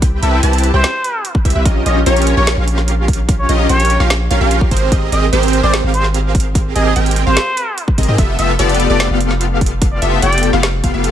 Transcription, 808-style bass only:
Already playing: C2
0.23 C2
0.43 C2
0.74 C2
1.45 C2
1.55 C2
1.65 A#1
1.86 A#1
2.06 A#1
2.37 A#1
2.57 A#1
3.49 A#1
3.69 A#1
4.00 A#1
4.31 A#1
4.41 A#1
4.71 G#1
4.92 G#1
5.12 G#1
5.33 G#1
5.63 G#1
5.84 G#1
6.76 G#1
6.96 G#1
7.27 G#1
7.98 G#1
8.08 G#2
8.18 F1
8.39 F1
8.59 F1
8.90 F1
9.10 F1
10.02 F1
10.23 F1
10.53 F1
10.84 F1
10.94 F1

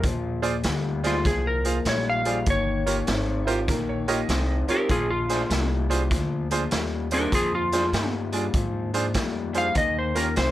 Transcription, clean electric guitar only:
0.04 A#2 F3
0.43 A#2 F3
0.64 A#2 G3
1.04 A#2 G3
1.25 A#2 F3
1.64 A#2 F3
1.86 A#2 G3
2.25 A#2 G3
2.47 D#3 A#3
2.86 D#3 A#3
3.07 D#3 C4
3.47 D#3 C4
3.68 D#3 A#3
4.08 D#3 A#3
4.29 D#3 C4
4.68 D#3 C4
4.89 A#2 F3
5.29 A#2 F3
5.50 A#2 G3
5.89 A#2 G3
6.11 A#2 F3
6.51 A#2 F3
6.71 A#2 G3
7.12 A#2 G3
7.32 A#2 F3
7.72 A#2 F3
7.93 A#2 G3
8.32 A#2 G3
8.54 A#2 F3
8.94 A#2 F3
9.15 A#2 G3
9.53 A#2 G3
9.75 D#3 A#3
10.16 D#3 A#3
10.36 D#3 C4

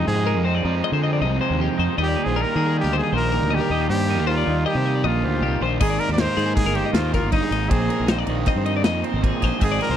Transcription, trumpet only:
0.07 G#4
2.03 G4
2.24 G#4
2.42 A#4
2.80 G4
2.98 G#4
3.16 A#4
3.55 G4
3.90 G4
4.27 F4
4.66 G4
5.06 F4
5.81 G#4
6.00 A#4
6.13 D5
6.21 C5
6.56 G#4
6.76 G4
6.93 F4
7.15 F4
7.32 D#4
7.70 G#4
9.64 G#4
9.82 A#4

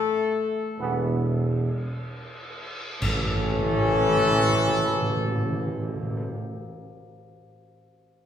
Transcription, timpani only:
Already playing: A2
3.01 A2
3.08 A2
3.15 A2
3.23 A2
3.30 A2
3.37 A2
3.44 A2
3.51 A2
3.58 A2
3.65 A2
3.72 A2
3.80 A2
3.87 A2
3.95 A2
4.02 A2
4.09 A2
4.17 A2
4.24 A2
4.31 A2
4.38 A2
4.46 A2
4.53 A2
4.59 A2
4.67 A2
4.74 A2
4.81 A2
4.88 A2
4.95 A2
5.02 A2
5.09 A2
5.17 A2
5.24 A2
5.31 A2
5.37 A2
5.44 A2
5.52 A2
5.59 A2
5.66 A2
5.73 A2
5.81 A2
5.88 A2
5.96 A2
6.03 A2
6.10 A2
6.17 A2

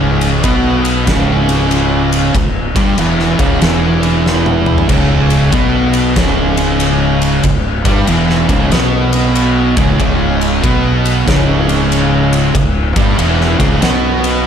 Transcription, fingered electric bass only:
Already playing: C#1
0.44 B1
1.08 C#1
2.34 C#1
2.76 G1
2.99 E1
3.39 C#1
3.62 E1
4.89 C#1
5.53 B1
6.16 C#1
7.44 C#1
7.85 G1
8.08 E1
8.49 C#1
8.72 B1
9.77 C#1
10.00 C#1
10.63 B1
11.28 C#1
12.55 C#1
12.96 G1
13.19 E1
13.60 C#1
13.81 B1

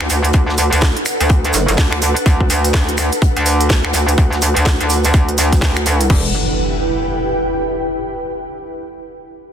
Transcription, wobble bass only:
0.00 D2
0.10 D2
0.34 D2
0.72 D2
1.21 D2
1.54 F#1
1.69 F#1
1.78 D2
2.26 D2
2.50 D2
2.74 D2
3.37 D2
3.85 D2
3.94 D2
4.18 D2
4.57 D2
4.81 D2
5.14 D2
5.62 D2
6.10 E1

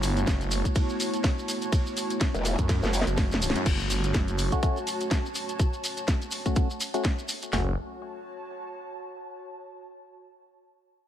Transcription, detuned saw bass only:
Already playing: G1
0.27 F#1
2.59 F#2
3.07 F#1
3.56 F#2
3.66 F#1
3.80 G1
4.14 F#1
7.53 F#1

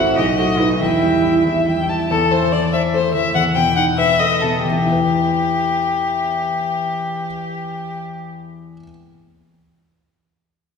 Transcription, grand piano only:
Already playing: A1 A3 F#4 C5
0.17 B1
0.38 A3
0.60 D#4 B4
0.81 E2
1.03 G3
1.24 E4
1.45 E2
1.67 G3
1.89 E4
2.11 E2
2.32 E3
2.53 E4
2.73 C5
2.94 A3
3.14 E3
3.35 E2
3.56 B2
3.76 D#4
3.98 B4
4.20 A3
4.43 B2
4.65 E2
4.72 E3
4.78 B3
4.86 E4
4.92 B4
4.99 E5

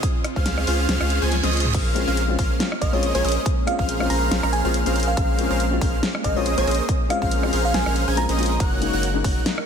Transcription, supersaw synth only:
0.36 C#4 F4 G#4 C5 F5
0.67 C#4 F4 G#4 C5 F5
0.89 C#4 F4 G#4 C5 F5
1.01 C#4 F4 G#4 C5 F5
1.22 C#4 F4 G#4 C5 G#5
1.43 C#4 F4 G#4 C5 D#5
1.74 C#4 G#4 A#4 C5 F5
2.07 C#4 G#4 A#4 C5 F5
2.39 C#4 G#4 A#4 C5 F5
2.82 C#4 G#4 A#4 C5 F5
2.93 C#4 G#4 A#4 C5 D#5
3.15 C#4 G#4 A#4 C5 G#5
3.24 C#4 G#4 A#4 C5 D#5
3.79 C#4 G#4 A#4 C5 F5
4.10 C#4 G#4 A#4 C5 F5
4.31 C#4 G#4 A#4 C5 F5
4.43 C#4 G#4 A#4 C5 F5
4.65 C#4 G#4 A#4 C5 F5
4.86 C#4 G#4 A#4 C5 F5
5.17 C#4 G#4 A#4 C5 F5
5.50 C#4 G#4 A#4 C5 F5
5.81 C#4 G#4 A#4 C5 F5
6.24 C#4 G#4 A#4 C5 F5
6.36 C#4 G#4 A#4 C5 D#5
6.58 C#4 G#4 A#4 C5 G#5
6.67 C#4 G#4 A#4 C5 D#5
7.22 C#4 G#4 A#4 C5 F5
7.53 C#4 G#4 A#4 C5 F5
7.74 C#4 G#4 A#4 C5 F5
7.86 C#4 G#4 A#4 C5 F5
8.08 C#4 G#4 A#4 C5 G#5
8.29 C#4 G#4 A#4 C5 D#5
8.60 D#4 F#4 A#4 C#5 F#5
8.93 D#4 F#4 A#4 C#5 F#5
9.24 D#4 F#4 A#4 C#5 F#5

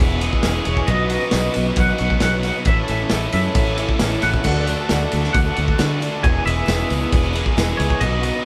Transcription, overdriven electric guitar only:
Already playing: E2 B2 E3 G#3 B3 G#4
0.21 E3 G#3 B3 G#4
0.44 E3 G#3 B3 G#4
0.66 E3 G#3 B3 G#4
0.88 B2 F#3 B3 D#4 F#4
1.10 B3 D#4 F#4
1.32 B2 F#3 B3 D#4 F#4
1.99 B3 D#4 F#4
2.22 F#3 B3 D#4 F#4
2.44 B3 D#4 F#4
2.66 A2 E3 A3 C#4 E4
2.89 A3 C#4 E4
3.11 A2 E3 A3 C#4 E4
3.76 A3 C#4 E4
4.00 E3 A3 C#4 E4
4.22 A3 C#4 E4
4.44 D3 A3 D4 F#4
4.67 A3 D4 F#4
4.89 D3 A3 D4 F#4
5.56 A3 D4 F#4
5.78 D3 A3 D4 F#4
6.00 A3 D4 F#4
6.23 E2 B2 E3 G#3 B3 G#4
6.44 G#3 B3 G#4
6.49 E3
6.67 E2 B2 E3 G#3 B3 G#4
7.34 E3 G#3 B3 G#4
7.56 E3 G#3 B3 G#4
7.78 E3 G#3 B3 G#4
8.00 B2 F#3 B3 D#4 F#4
8.21 B3 D#4 F#4

